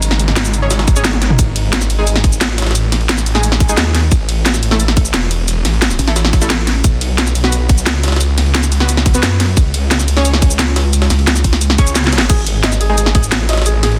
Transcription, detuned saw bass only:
0.02 1.37 G#1 loud
1.39 1.89 G#1 loud
1.90 2.40 G#1 loud
2.41 3.76 A1 loud
3.77 4.10 D#2 medium
4.12 4.61 A1 loud
4.63 5.12 A1 loud
5.14 5.64 E1 loud
5.65 5.98 A1 loud
6.84 7.34 B1 loud
7.35 7.85 B1 loud
7.86 9.21 C#2 loud
9.23 9.56 F#2 loud
9.57 10.07 C#2 loud
10.08 10.58 C#2 loud
11.79 12.28 C#2 loud
12.30 12.79 G#1 loud
12.81 13.31 G#1 loud
13.32 13.99 A1 loud

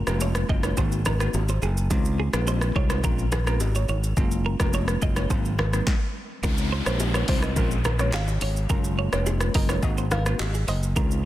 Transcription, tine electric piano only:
0.07 0.46 G#3 medium
0.07 0.46 A#3 medium
0.07 0.46 C#4 medium
0.07 0.46 F4 medium
0.49 0.75 G#3 medium
0.49 0.75 A#3 medium
0.49 0.75 C#4 medium
0.49 0.75 F4 medium
0.77 0.98 A#3 medium
0.77 0.98 C4 medium
0.77 0.98 D#4 medium
0.77 0.98 F#4 loud
1.20 1.40 A#3 medium
1.20 1.40 C4 medium
1.20 1.40 D#4 medium
1.20 1.41 F#4 medium
1.90 2.30 G#3 loud
1.90 2.30 C4 medium
1.90 2.30 D#4 medium
1.90 2.30 F4 loud
2.33 2.72 G#3 medium
2.33 2.72 C4 medium
2.33 2.72 D#4 medium
2.33 2.72 F4 medium
2.75 3.01 G#3 medium
2.75 3.01 C4 medium
2.75 3.02 D#4 medium
2.75 3.02 F4 medium
3.04 3.24 G#3 medium
3.04 3.25 C4 medium
3.04 3.25 C#4 medium
3.04 3.25 F4 loud
3.47 3.67 G#3 medium
3.47 3.67 C4 medium
3.47 3.67 C#4 medium
3.47 3.67 F4 medium
4.17 4.56 G#3 medium
4.17 4.57 A#3 medium
4.17 4.57 C#4 medium
4.17 4.57 F4 loud
4.60 4.99 G#3 medium
4.60 4.99 A#3 medium
4.60 4.99 C#4 medium
4.60 4.99 F4 medium
5.02 5.28 G#3 medium
5.02 5.28 A#3 medium
5.02 5.28 C#4 medium
5.02 5.28 F4 medium
5.30 5.51 F#3 medium
5.30 5.51 A#3 medium
5.30 5.51 C4 medium
5.30 5.51 D#4 loud
5.73 5.93 F#3 medium
5.73 5.93 A#3 medium
5.73 5.93 C4 medium
5.73 5.94 D#4 medium
6.43 6.83 G#3 loud
6.43 6.83 C4 medium
6.43 6.83 D#4 medium
6.43 6.83 F4 loud
6.86 7.25 G#3 medium
6.86 7.25 C4 medium
6.86 7.25 D#4 medium
6.86 7.25 F4 medium
7.28 7.54 G#3 medium
7.28 7.55 C4 medium
7.28 7.55 D#4 medium
7.28 7.55 F4 medium
7.56 7.77 G#3 medium
7.56 7.77 C4 medium
7.56 7.77 C#4 medium
7.56 7.77 F4 loud
7.99 8.20 G#3 medium
7.99 8.20 C4 medium
7.99 8.20 C#4 medium
7.99 8.20 F4 medium
8.69 9.09 G#3 medium
8.69 9.09 A#3 medium
8.69 9.09 C#4 medium
8.69 9.09 F4 loud
9.13 9.51 G#3 medium
9.13 9.51 A#3 medium
9.13 9.52 C#4 medium
9.13 9.52 F4 medium
9.54 9.81 G#3 medium
9.54 9.81 A#3 medium
9.54 9.81 C#4 medium
9.54 9.81 F4 medium
9.83 10.04 A#3 medium
9.83 10.04 C4 medium
9.83 10.04 D#4 medium
9.83 10.04 F#4 loud
10.26 10.46 A#3 medium
10.26 10.46 C4 medium
10.26 10.46 D#4 medium
10.26 10.46 F#4 medium
10.96 11.25 G#3 loud
10.96 11.25 C4 medium
10.96 11.25 D#4 medium
10.96 11.25 F4 loud

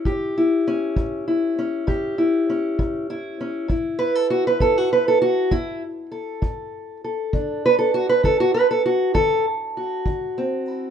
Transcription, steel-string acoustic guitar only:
0.00 0.37 E4 medium
0.05 0.60 A2 medium
0.05 1.87 G4 medium
0.38 1.26 E4 medium
0.67 1.57 C#4 medium
0.97 1.51 A2 medium
1.28 2.17 E4 medium
1.59 2.48 C#4 medium
1.87 2.42 A2 medium
1.87 3.66 G4 medium
2.18 3.09 E4 medium
2.50 3.39 C#4 medium
2.79 3.33 A2 medium
3.10 3.66 E4 medium
3.41 3.67 C#4 medium
3.68 4.24 A2 medium
3.68 5.50 E4 soft
3.99 4.15 B4 loud
4.15 4.30 A4 medium
4.30 4.45 F#4 medium
4.47 4.61 B4 loud
4.60 5.15 A2 medium
4.60 4.78 A4 medium
4.78 4.92 F#4 medium
4.93 5.07 B4 medium
5.08 5.21 A4 medium
5.22 5.52 F#4 medium
5.51 6.06 A2 medium
5.51 5.82 E4 medium
6.12 7.04 A4 soft
6.42 6.97 A2 medium
7.04 7.65 A4 soft
7.33 7.88 D3 medium
7.33 10.68 D4 soft
7.66 7.78 B4 loud
7.79 7.94 A4 medium
7.94 8.09 F#4 medium
8.09 8.24 B4 loud
8.23 8.78 D3 medium
8.23 8.40 A4 medium
8.40 8.54 F#4 medium
8.54 8.70 B4 medium
8.71 8.85 A4 medium
8.86 9.14 F#4 medium
9.14 9.69 D3 medium
9.14 9.45 A4 loud
9.77 10.90 F#4 soft
10.06 10.61 D3 medium
10.38 10.90 C4 medium
10.68 10.90 E4 medium

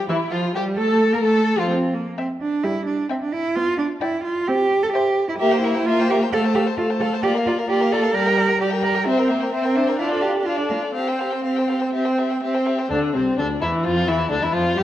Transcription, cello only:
0.09 0.34 E4 medium
0.32 0.55 F4 medium
0.55 0.63 G4 medium
0.78 1.15 A4 medium
1.13 1.24 A#4 medium
1.24 1.61 A4 medium
1.59 1.70 F4 medium
1.70 1.96 C4 medium
1.94 2.17 A#3 medium
2.18 2.26 C4 medium
2.41 2.65 D4 medium
2.64 2.86 E4 medium
2.87 3.09 D4 medium
3.10 3.15 C4 medium
3.22 3.34 D4 medium
3.33 3.57 E4 medium
3.56 3.78 F4 medium
3.78 3.86 D4 medium
4.01 4.24 E4 medium
4.24 4.49 F4 medium
4.47 4.84 G4 loud
4.83 4.93 A4 medium
4.93 5.27 G4 medium
5.29 5.33 E4 medium
5.39 5.62 G4 medium
5.63 5.88 E4 medium
5.86 6.08 F4 medium
6.09 6.17 G4 medium
6.32 6.40 A4 loud
6.54 6.62 G4 medium
6.77 6.85 F4 medium
7.00 7.08 A4 medium
7.23 7.31 G4 medium
7.46 7.54 F4 medium
7.69 7.93 G4 medium
7.92 8.16 A4 medium
8.14 8.61 A#4 loud
8.61 8.69 G4 medium
8.84 9.08 A#4 medium
9.07 9.31 C4 medium
9.29 9.52 A#3 medium
9.53 9.78 C4 medium
9.76 10.01 D4 medium
9.99 10.11 E4 medium
10.12 10.24 F4 medium
10.23 10.48 G4 medium
10.46 10.58 F4 medium
10.59 10.64 D4 medium
10.70 10.78 A#3 medium
10.95 12.63 C4 medium
12.91 12.99 D2 medium
13.15 13.38 C2 soft
13.39 13.61 D2 medium
13.62 13.70 E2 medium
13.86 14.10 F2 medium
14.08 14.31 E2 medium
14.31 14.43 D2 medium
14.43 14.48 E2 soft
14.55 14.78 F2 medium
14.78 14.83 G2 medium

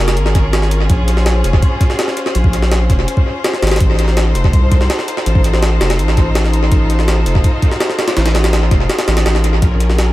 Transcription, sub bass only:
0.00 0.18 F1 medium
0.17 0.88 G#1 medium
0.90 1.43 A#1 loud
1.44 1.61 F1 medium
2.35 2.88 A#1 loud
2.90 3.06 F1 medium
3.62 3.79 G#1 medium
3.81 4.34 A1 loud
4.35 4.51 F1 medium
4.53 4.88 C2 medium
5.26 5.79 A1 loud
5.81 6.01 F1 medium
5.99 6.70 A1 medium
6.72 7.25 A1 loud
7.26 7.42 F1 medium
8.17 8.70 A1 loud
8.71 8.88 F1 medium
9.08 9.24 A1 loud
9.26 9.61 A1 medium
9.62 10.13 A#1 loud

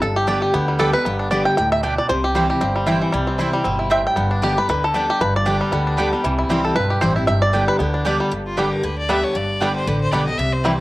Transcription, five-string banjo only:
0.02 0.17 A4 medium
0.16 0.27 G4 medium
0.28 0.41 D5 medium
0.42 0.82 G4 medium
0.54 0.91 B3 medium
0.68 2.08 G3 medium
0.79 0.93 A4 medium
0.93 1.19 B4 loud
1.05 1.43 B3 medium
1.19 1.30 D4 medium
1.31 1.45 D5 medium
1.45 1.56 G5 loud
1.57 1.72 G5 loud
1.72 1.83 E5 loud
1.83 2.09 D4 medium
1.98 2.09 D5 loud
2.09 2.24 C5 medium
2.24 2.49 G4 medium
2.35 2.75 G3 medium
2.50 3.90 G4 medium
2.61 2.99 C4 medium
2.76 3.12 G3 medium
2.87 3.24 E4 medium
3.02 3.37 E3 medium
3.12 3.53 G3 medium
3.27 3.62 C4 medium
3.39 3.76 E4 medium
3.53 4.84 G3 medium
3.64 4.02 C4 medium
3.79 3.91 E4 medium
3.91 4.05 E5 loud
4.07 4.30 G5 loud
4.16 4.54 B3 medium
4.31 4.66 D4 medium
4.43 4.58 G4 medium
4.58 4.68 B4 medium
4.70 4.84 B4 loud
4.84 5.10 A4 loud
4.94 5.32 D4 medium
5.10 5.21 G4 medium
5.21 5.34 B4 loud
5.36 5.72 D5 medium
5.46 5.84 D4 medium
5.61 6.12 G3 medium
5.72 6.10 B3 medium
5.87 6.22 D4 medium
5.99 6.24 D3 medium
6.13 6.50 G3 medium
6.24 6.62 E3 medium
6.39 6.74 E4 medium
6.50 7.90 G3 medium
6.65 6.76 A4 medium
6.76 7.01 B4 loud
6.90 8.30 G4 medium
7.01 7.15 C5 loud
7.16 7.27 E4 medium
7.27 7.42 E5 loud
7.42 7.68 D5 loud
7.54 7.91 D4 medium
7.68 7.79 B4 loud
7.79 8.06 B3 medium
7.94 8.29 D4 medium
8.06 8.19 D5 medium
8.20 8.32 G3 medium
8.58 8.64 G3 medium
8.58 8.64 B3 medium
8.58 8.64 D4 medium
9.09 9.16 G3 medium
9.09 9.16 B3 medium
9.09 9.16 D4 medium
9.62 9.68 G3 medium
9.62 9.68 B3 medium
9.62 9.68 D4 medium
10.13 10.19 G3 medium
10.13 10.19 B3 medium
10.13 10.20 D4 medium
10.65 10.71 G3 medium
10.65 10.71 C4 medium
10.65 10.72 E4 medium

